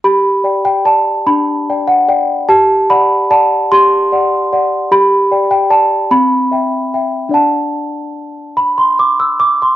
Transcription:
\new Staff \with { instrumentName = "Celesta" } { \time 6/8 \key g \major \tempo 4. = 49 << { b''8. g''16 a''8 b''8. fis''16 g''8 | a''8 b''8 a''8 c'''4. | b''8. g''16 a''8 b''4. | a''4. b''16 c'''16 d'''16 e'''16 d'''16 c'''16 | } \\ { g'8 <d'' g''>8 <d'' g''>8 d'8 <d'' g''>8 d''8 | g'8 <d'' fis''>8 <d'' fis''>8 g'8 <d'' fis''>8 <d'' fis''>8 | g'8 <d'' g''>8 <d'' g''>8 c'8 <e'' g''>8 <e'' g''>8 | <d' d'' fis''>2. | } >> }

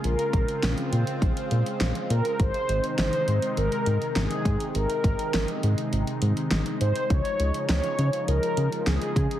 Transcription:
<<
  \new Staff \with { instrumentName = "Analog polysynth" } { \time 4/4 \key aes \major \tempo 4 = 102 bes'2 r4. bes'8 | c''4 c''4 bes'4 aes'4 | bes'2 r4. c''8 | des''4 des''4 bes'4 aes'4 | }
  \new Staff \with { instrumentName = "Analog synth pad" } { \clef bass \time 4/4 \key aes \major << { <c' f'>1 | ees'1~ | ees'1~ | ees'1 | } \\ { <des aes>1 | <c ees>1~ | <c ees>1 | <des f>1 | } >> }
  \new Staff \with { instrumentName = "Analog synth bass" } { \clef bass \time 4/4 \key aes \major bes,,16 r16 bes,,16 r16 bes,,16 r16 bes,16 r16 bes,,16 r16 bes,16 r16 bes,,16 r16 bes,16 r16 | aes,,16 r16 aes,,16 r16 aes,,16 r16 aes,16 r16 aes,,16 r16 aes,16 r16 aes,,16 r16 aes,16 r16 | aes,,16 r16 aes,,16 r16 aes,,16 r16 aes,16 r16 aes,,16 r16 aes,16 r16 aes,,16 r16 aes,16 r16 | des,16 r16 des,16 r16 des,16 r16 des16 r16 des,16 r16 des16 r16 des,16 r16 des16 r16 | }
  \new DrumStaff \with { instrumentName = "Drums" } \drummode { \time 4/4 hh16 hh16 <hh bd>16 hh16 <hh sn>16 hh16 hh16 hh16 <hh bd>16 hh16 hh16 hh16 <hh sn>16 hh16 hh16 hh16 | <hh bd>16 hh16 hh16 hh16 <hh sn>16 hh16 hh16 hh16 hh16 hh16 hh16 hh16 <hh sn>16 hh16 <hh bd>16 hh16 | hh16 hh16 <hh bd>16 hh16 <hh sn>16 hh16 hh16 hh16 hh16 hh16 hh16 hh16 <hh sn>16 hh16 hh16 hh16 | <hh bd>16 hh16 hh16 hh16 <hh sn>16 hh16 hh16 hh16 hh16 hh16 hh16 hh16 <hh sn>16 hh16 <hh bd>16 hh16 | }
>>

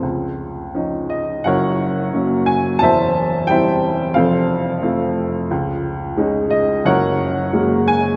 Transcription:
<<
  \new Staff \with { instrumentName = "Upright piano" } { \time 4/4 \key des \major \tempo 4 = 88 << { r4. ees''8 ges''4. aes''8 | a''4 g''4 f''4 r4 | r4. ees''8 ges''4. aes''8 | } \\ { r2 <bes' des''>2 | <c'' e''>4 <c'' e''>4 <a' c''>2 | r2 <bes' des''>2 | } >> }
  \new Staff \with { instrumentName = "Upright piano" } { \clef bass \time 4/4 \key des \major des,4 <f des' ees'>4 <ges,, ges,>4 <ges bes des'>4 | <e,, e,>4 <g c' e'>4 <f,, f,>4 <a c' f'>4 | des,4 <aes des' ees'>4 <ges,, ges,>4 <aes bes ges'>4 | }
>>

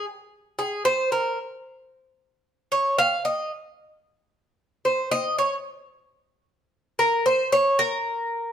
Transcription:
\new Staff \with { instrumentName = "Cuban tres" } { \time 4/4 \key bes \dorian \tempo 4 = 112 r4 aes'8 c''8 bes'8 r4. | r4 des''8 f''8 ees''8 r4. | r4 c''8 ees''8 des''8 r4. | r4 bes'8 c''8 des''8 bes'4. | }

